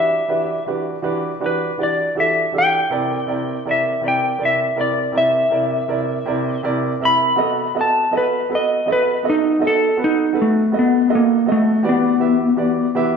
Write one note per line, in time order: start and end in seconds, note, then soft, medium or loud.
0.00 0.19 E3 medium
0.00 0.20 D4 soft
0.00 0.19 F#4 soft
0.00 0.20 G4 medium
0.00 0.20 B4 medium
0.00 0.66 E5 medium
0.28 0.57 E3 medium
0.28 0.56 D4 soft
0.28 0.57 F#4 soft
0.28 0.57 G4 soft
0.28 0.57 B4 medium
0.66 0.94 E3 medium
0.66 0.95 D4 soft
0.66 0.95 F#4 medium
0.66 0.95 G4 soft
0.66 0.95 B4 medium
1.02 1.31 E3 medium
1.02 1.31 D4 medium
1.02 1.31 F#4 medium
1.02 1.31 G4 medium
1.02 1.32 B4 medium
1.40 1.69 E3 medium
1.40 1.69 D4 medium
1.40 1.69 F#4 medium
1.40 1.69 G4 medium
1.40 1.69 B4 medium
1.46 1.80 B4 medium
1.78 2.06 E3 medium
1.78 2.06 D4 soft
1.78 2.06 F#4 soft
1.78 2.07 G4 soft
1.78 2.07 D5 medium
1.83 2.17 D5 medium
2.15 2.43 E3 medium
2.15 2.44 D4 medium
2.15 2.44 F#4 soft
2.15 2.44 G4 soft
2.15 2.44 A4 medium
2.20 2.54 E5 medium
2.52 2.80 E3 medium
2.52 2.81 D4 medium
2.52 2.81 F#4 soft
2.52 2.81 G4 soft
2.52 2.81 A4 medium
2.58 3.64 G5 loud
2.90 3.18 C3 medium
2.90 3.18 E4 medium
2.90 3.19 A#4 medium
2.90 3.19 D5 medium
3.27 3.55 C3 medium
3.27 3.55 E4 medium
3.27 3.56 A#4 medium
3.27 3.56 D5 medium
3.65 3.93 C3 medium
3.65 3.93 E4 soft
3.65 3.94 A#4 medium
3.65 3.94 D5 medium
3.71 4.04 E5 medium
4.01 4.29 C3 medium
4.01 4.30 E4 soft
4.01 4.30 A#4 soft
4.01 4.31 D5 medium
4.08 4.41 G5 medium
4.38 4.67 C3 medium
4.38 4.67 E4 soft
4.38 4.67 A#4 soft
4.38 4.68 D5 medium
4.45 4.79 E5 medium
4.76 5.04 C3 medium
4.76 5.04 E4 soft
4.76 5.05 A#4 medium
4.76 5.05 D5 medium
4.81 5.15 D5 medium
5.12 5.41 C3 medium
5.12 5.41 E4 medium
5.12 5.42 A#4 medium
5.12 5.42 D5 medium
5.18 6.61 E5 medium
5.50 5.79 C3 medium
5.50 5.79 E4 soft
5.50 5.79 A#4 medium
5.50 5.80 D5 medium
5.88 6.16 C3 medium
5.88 6.16 E4 medium
5.88 6.17 A#4 medium
5.88 6.17 D5 medium
6.25 6.54 C3 medium
6.25 6.54 E4 medium
6.25 6.54 A#4 medium
6.25 6.54 D5 medium
6.63 6.91 C3 medium
6.63 6.91 E4 medium
6.63 6.92 A#4 medium
6.63 6.92 D5 medium
7.00 7.28 C3 medium
7.00 7.29 E4 medium
7.00 7.29 A#4 medium
7.00 7.29 E5 medium
7.05 7.75 B5 loud
7.36 7.65 B3 medium
7.36 7.65 F#4 medium
7.36 7.66 A4 medium
7.36 7.66 D#5 medium
7.75 8.03 B3 medium
7.75 8.03 F#4 soft
7.75 8.03 A4 soft
7.75 8.03 D#5 medium
7.81 8.14 A5 medium
8.11 8.40 B3 medium
8.11 8.40 F#4 medium
8.11 8.40 A4 medium
8.11 8.40 D#5 medium
8.17 8.51 B4 medium
8.50 8.77 B3 medium
8.50 8.78 F#4 medium
8.50 8.78 A4 medium
8.50 8.78 B4 medium
8.55 8.88 D#5 medium
8.86 9.14 B3 medium
8.86 9.15 F#4 medium
8.86 9.15 A4 medium
8.86 9.15 D#5 medium
8.92 9.26 B4 medium
9.23 9.51 B3 medium
9.23 9.52 F#4 medium
9.23 9.52 A4 medium
9.23 9.52 D#5 medium
9.30 9.63 D#4 medium
9.59 9.88 B3 medium
9.59 9.88 F#4 medium
9.59 9.89 A4 medium
9.59 9.89 D#5 medium
9.67 10.00 A4 loud
9.97 10.26 B3 medium
9.97 10.26 F#4 medium
9.97 10.26 A4 medium
9.97 10.27 B4 medium
10.04 10.37 D#4 medium
10.33 10.62 B3 medium
10.33 10.63 F#4 medium
10.33 10.63 A4 medium
10.33 10.63 B4 medium
10.42 10.75 A3 medium
10.72 11.00 B3 medium
10.72 11.01 F#4 soft
10.72 11.01 A4 medium
10.72 11.01 D#5 medium
10.79 11.12 B3 medium
11.08 11.37 B3 medium
11.08 11.38 F#4 medium
11.08 11.38 A4 medium
11.08 11.38 D#5 medium
11.15 11.49 A#3 medium
11.46 11.75 B3 medium
11.46 11.75 F#4 medium
11.46 11.75 A4 medium
11.46 11.76 D#5 medium
11.52 11.86 A3 loud
11.83 12.11 E3 medium
11.83 12.12 F#4 medium
11.83 12.12 G4 medium
11.83 12.12 B4 medium
11.83 12.12 D5 medium
11.89 13.17 B3 medium
12.19 12.48 E3 medium
12.19 12.48 F#4 medium
12.19 12.49 G4 medium
12.19 12.49 B4 medium
12.19 12.49 E5 medium
12.56 12.85 E3 medium
12.56 12.86 F#4 medium
12.56 12.86 G4 medium
12.56 12.86 B4 medium
12.56 12.86 D5 medium
12.95 13.17 E3 medium
12.95 13.17 F#4 medium
12.95 13.17 G4 medium
12.95 13.17 B4 medium
12.95 13.17 E5 medium